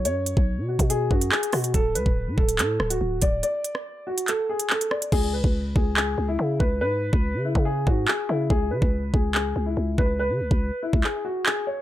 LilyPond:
<<
  \new Staff \with { instrumentName = "Grand piano" } { \time 4/4 \key cis \phrygian \tempo 4 = 142 cis''4. fis'8 gis'8 fis'8 gis'8 fis'8 | a'8 b'4 a'8 a'8. fis'8. d''8 | d''4. fis'8 a'8 gis'8 a'8 d''8 | gis'8 b'4 gis'8 gis'8. e'8. b'8 |
b'4. e'8 gis'8 fis'8 gis'8 e'8 | gis'8 b'4 gis'8 gis'8. e'8. b'8 | b'4. e'8 gis'8 fis'8 gis'8 cis''8 | }
  \new Staff \with { instrumentName = "808-style bass" } { \clef bass \time 4/4 \key cis \phrygian fis,8. b,,8 b,8 b,8. fis,8 r8 b,8 | d,,8 d,16 d,,8 a,16 d,,8 a,8 d,,8 d,,8 d,,8 | r1 | cis,8. cis,8. cis,4 cis,8 cis8 cis,8 |
gis,8. cis,8 cis8 cis8. gis,8 r8 cis8 | cis,8 cis16 cis,8. cis,4 cis,8 cis,8 cis,8~ | cis,16 cis16 cis,16 cis,8 r8 cis,16 r2 | }
  \new DrumStaff \with { instrumentName = "Drums" } \drummode { \time 4/4 hh8 hh16 bd16 r8. <hh bd>16 hh8 bd16 hh16 hc16 hh16 <hho ss>16 hh16 | <hh bd>8 hh16 bd16 r8 bd16 hh16 <hc hh>8 ss16 hh16 r8 <hh bd>8 | hh8 hh16 ss16 r8. hh16 <hc hh>8. hh16 hc16 hh16 ss16 hh16 | <cymc bd>8. bd16 r8 bd8 hc4 r8 bd8 |
r8. bd16 r8. bd16 r8 bd8 hc4 | bd8. bd16 r8 bd8 hc4 r8 bd8 | r8. bd16 r8. bd16 hc4 hc4 | }
>>